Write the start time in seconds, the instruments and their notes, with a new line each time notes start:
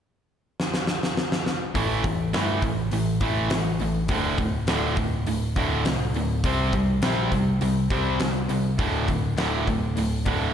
0.60 snare
0.74 snare
0.87 snare
1.03 snare
1.17 snare
1.32 snare
1.46 snare
1.74 picked electric bass A1, distorted electric guitar A2 E3 A3, kick, open hi-hat
2.04 picked electric bass A1, distorted electric guitar A2 E3, kick, open hi-hat
2.33 picked electric bass G2, distorted electric guitar A2 E3 A3, snare, open hi-hat
2.62 picked electric bass A1, distorted electric guitar A2 E3, kick, open hi-hat
2.91 picked electric bass A1, distorted electric guitar A2 E3, open hi-hat
3.21 picked electric bass A1, distorted electric guitar A2 E3 A3, kick, open hi-hat
3.50 picked electric bass A1, distorted electric guitar A2 E3, snare, open hi-hat
3.79 picked electric bass A1, distorted electric guitar A2 E3, open hi-hat
4.08 picked electric bass D1, distorted electric guitar D2 A2 D3, kick, open hi-hat
4.38 picked electric bass D1, distorted electric guitar D2 A2, kick, open hi-hat
4.67 picked electric bass D1, distorted electric guitar D2 A2 D3, snare, open hi-hat
4.96 picked electric bass D1, distorted electric guitar D2 A2, kick, open hi-hat
5.26 picked electric bass D1, distorted electric guitar D2 A2, open hi-hat
5.56 picked electric bass D1, distorted electric guitar D2 A2 D3, kick, open hi-hat
5.85 picked electric bass C2, distorted electric guitar D2 A2, snare, open hi-hat
6.14 picked electric bass D1, distorted electric guitar D2 A2, open hi-hat
6.44 picked electric bass C2, distorted electric guitar C3 G3 C4, kick, open hi-hat
6.72 picked electric bass C2, distorted electric guitar C3 G3, kick, open hi-hat
7.02 picked electric bass A#1, distorted electric guitar C3 G3 C4, snare, open hi-hat
7.32 picked electric bass C2, distorted electric guitar C3 G3, kick, open hi-hat
7.61 picked electric bass C2, distorted electric guitar C3 G3, open hi-hat
7.90 picked electric bass C2, distorted electric guitar C3 G3 C4, kick, open hi-hat
8.20 picked electric bass C2, distorted electric guitar C3 G3, snare, open hi-hat
8.48 picked electric bass C2, distorted electric guitar C3 G3, open hi-hat
8.78 picked electric bass D1, distorted electric guitar D2 A2 D3, kick, open hi-hat
9.08 picked electric bass D1, distorted electric guitar D2 A2, kick, open hi-hat
9.37 picked electric bass D1, distorted electric guitar D2 A2 D3, snare, open hi-hat
9.67 picked electric bass D1, distorted electric guitar D2 A2, kick, open hi-hat
9.96 picked electric bass D1, distorted electric guitar D2 A2, open hi-hat
10.25 picked electric bass D1, distorted electric guitar D2 A2 D3, kick, open hi-hat